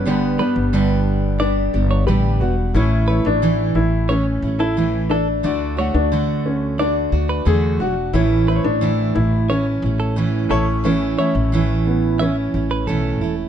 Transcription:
<<
  \new Staff \with { instrumentName = "Clean electric guitar" } { \time 4/4 \key a \major \tempo 4 = 89 r8 b'16 r4 r16 d''16 r8 cis''16 b'8. r16 | r8 b'16 r4 r16 cis''16 r8 a'16 r8 a'16 r16 | r8 cis''16 r4 r16 d''16 r8 b'16 a8. r16 | r8 b'16 r4 r16 cis''16 r8 a'16 r8 a'16 r16 |
r8 cis''16 r4 r16 e''16 r8 b'16 a'8. r16 | }
  \new Staff \with { instrumentName = "Grand piano" } { \time 4/4 \key a \major <g b b'>8 <g b d' b'>2 r4. | <a cis' e' cis''>8 <a e' cis''>2 r4. | <a d' fis' d''>8 <a fis' fis''>2 r4. | <a cis' e' cis''>8 <a e' c'' cis''>2 r4 <a cis' e' cis''>8~ |
<a cis' e' cis''>8 <a cis' e' e''>2 r4. | }
  \new Staff \with { instrumentName = "Upright piano" } { \time 4/4 \key a \major b2 d'4 g'8 fis'8 | e'8. d'8. e'8 cis'8. e'8. d'8~ | d'8. d'8. cis'8 d'4 gis'8 fis'8 | e'8. d'8. e'8 cis'2 |
cis'4. b8 cis'4. r8 | }
  \new Staff \with { instrumentName = "Steel-string acoustic guitar" } { \time 4/4 \key a \major <g, d g b d' g'>8 <g b d' g'>8 <g, d g b d' g'>4 <g b d' g'>8 <g b d' g'>8 <g, d g b d' g'>8 <g b d'>8 | <a, e a cis' e'>8 <a cis' e'>8 <a, e a e'>4 <e a cis' e'>8 <a cis' e'>8 <a, e a cis' e'>8 <a e'>8 | <d a d' fis'>8 <a d' fis'>8 <d a fis'>4 <d a d' fis'>8 <a d' fis'>8 <d a d' fis'>8 <a d' fis'>8 | <a, e a cis' e'>8 <a cis' e'>8 <a, e a e'>4 <e a cis' e'>8 <a cis' e'>8 <a, e a cis' e'>8 <a cis' e'>8 |
<a, e a cis' e'>8 <a cis' e'>8 <a, e a cis' e'>4 <e a cis' e'>8 <a cis' e'>8 <a, e a cis' e'>8 <a cis' e'>8 | }
  \new Staff \with { instrumentName = "Upright bass" } { \clef bass \time 4/4 \key a \major g,,8 r16 g,,4.~ g,,16 g,,8 a,,8 e,,8 | a,,8. a,,8. a,,4 a,,4. | d,8. d,4.~ d,16 d,8 e,8 e,,8 | a,,8. a,,8. a,,4 a,,4 a,,8~ |
a,,8 r16 a,,4.~ a,,16 a,,8 b,,8 e,,8 | }
>>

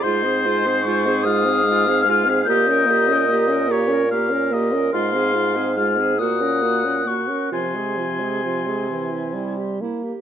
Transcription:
<<
  \new Staff \with { instrumentName = "Flute" } { \time 6/8 \key f \minor \tempo 4. = 48 c'''4 des'''8 ees'''4 f'''8 | g'''4. r4. | c'''4 f'''8 ees'''4 des'''8 | c'''2~ c'''8 r8 | }
  \new Staff \with { instrumentName = "Oboe" } { \time 6/8 \key f \minor c''4. f''4. | ees''4. des''8 f''8 ees''8 | f''4 r8 ges''4. | aes''2~ aes''16 r8. | }
  \new Staff \with { instrumentName = "Clarinet" } { \time 6/8 \key f \minor f'16 aes'16 f'16 aes'16 f'16 aes'16 f'16 aes'16 f'16 aes'16 f'16 aes'16 | g'16 bes'16 g'16 bes'16 g'16 bes'16 g'16 bes'16 g'16 bes'16 g'16 bes'16 | f'16 aes'16 f'16 aes'16 f'16 aes'16 ges'16 bes'16 ges'16 bes'16 ges'16 bes'16 | f'16 aes'16 f'16 aes'16 f'16 aes'16 e'16 g'16 e'16 g'16 e'16 g'16 | }
  \new Staff \with { instrumentName = "French horn" } { \time 6/8 \key f \minor aes16 c'16 aes16 c'16 aes16 c'16 aes16 c'16 aes16 c'16 aes16 c'16 | bes16 des'16 bes16 des'16 bes16 des'16 bes16 des'16 bes16 des'16 bes16 des'16 | aes16 c'16 aes16 c'16 aes16 c'16 bes16 des'16 bes16 des'16 bes16 des'16 | f16 aes16 f16 aes16 f16 aes16 e8 g8 bes8 | }
  \new Staff \with { instrumentName = "Bassoon" } { \clef bass \time 6/8 \key f \minor aes,2. | bes,2. | aes,4. bes,4 r8 | c2~ c8 r8 | }
>>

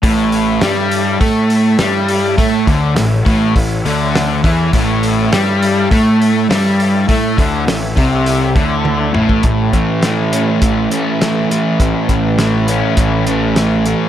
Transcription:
<<
  \new Staff \with { instrumentName = "Tonewheel organ" } { \time 4/4 \key a \major \tempo 4 = 102 <e' a' cis'' e''>1 | <a' cis'' e''>1 | <e' a' cis'' e''>1 | <e' a' cis'' e''>1 |
r1 | r1 | }
  \new Staff \with { instrumentName = "Distorted electric guitar" } { \clef bass \time 4/4 \key a \major a,4 g4 a4 g4 | a8 d8 a,8 a,8 a,8 d4 e8 | a,4 g4 a4 g4 | a8 d8 a,8 c4 d4 a,8 |
a,8 e8 a8 cis'8 e8 a8 e8 a8 | a,8 e8 a8 cis'8 e8 a8 e8 a8 | }
  \new Staff \with { instrumentName = "Overdriven electric guitar" } { \clef bass \time 4/4 \key a \major a,4 g4 a4 g4 | a8 d8 a,8 a,8 a,8 d4 e8 | a,4 g4 a4 g4 | a8 d8 a,8 c4 d4 a,8 |
a,8 e8 e8 a8 e8 cis'8 a8 e8 | a,8 e8 e8 a8 e8 cis'8 a8 e8 | }
  \new Staff \with { instrumentName = "Picked electric bass" } { \clef bass \time 4/4 \key a \major a,,4 g,4 a,4 g,4 | a,8 d,8 a,,8 a,,8 a,,8 d,4 e,8 | a,,4 g,4 a,4 g,4 | a,8 d,8 a,,8 c,4 d,4 a,,8 |
a,,8 a,4. a,,8 r4. | a,,16 r16 a,,4. a,,2 | }
  \new DrumStaff \with { instrumentName = "Drums" } \drummode { \time 4/4 <hho bd>8 hho8 <hho sn>8 hho8 <hho bd>8 hho8 <hho sn>8 hho8 | <hho bd>8 <hho bd>8 <hho sn>8 <hho bd>8 <hho bd>8 hho8 <hho sn>8 <hho bd>8 | <hho bd>8 hho8 <hho sn>8 hho8 <hho bd>8 hho8 <hho sn>8 hho8 | <hho bd>8 <hho bd>8 <hho sn>8 <hho bd>8 hho8 <hho bd>8 tommh8 toml16 bd16 |
<hh bd>8 <hh bd>8 <hh sn>8 hh8 <hh bd>8 hh8 <hh sn>8 hh8 | <hh bd>8 <hh bd>8 <hh sn>8 hh8 <hh bd>8 hh8 <hh sn>8 hh8 | }
>>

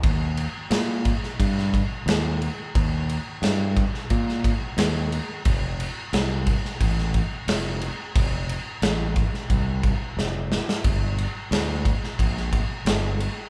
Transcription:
<<
  \new Staff \with { instrumentName = "Fingered electric bass" } { \clef bass \time 4/4 \key ees \lydian \tempo 4 = 89 ees,4 bes,4 g,4 ees,4 | ees,4 g,4 bes,4 ees,4 | f,,4 c,4 a,,4 f,,4 | f,,4 a,,4 c,4 f,,4 |
g,,4 d,4 bes,,4 g,,4 | }
  \new DrumStaff \with { instrumentName = "Drums" } \drummode { \time 4/4 <cymc bd>8 cymc8 <cymc sn>8 <cymc bd>16 sn16 <cymc bd>16 sn16 <cymc bd>8 <cymc sn>8 cymc8 | <cymc bd>8 cymc8 <cymc sn>8 <cymc bd>16 sn16 <cymc bd>16 sn16 <cymc bd>8 <cymc sn>8 cymc8 | <cymc bd>8 cymc8 <cymc sn>8 <cymc bd>16 sn16 <cymc bd>16 sn16 <cymc bd>8 <cymc sn>8 cymc8 | <cymc bd>8 cymc8 <cymc sn>8 <cymc bd>16 sn16 <cymc bd>8 <cymc bd>8 sn8 sn16 sn16 |
<cymc bd>8 cymc8 <cymc sn>8 <cymc bd>16 sn16 <cymc bd>16 sn16 <cymc bd>8 <cymc sn>8 cymc8 | }
>>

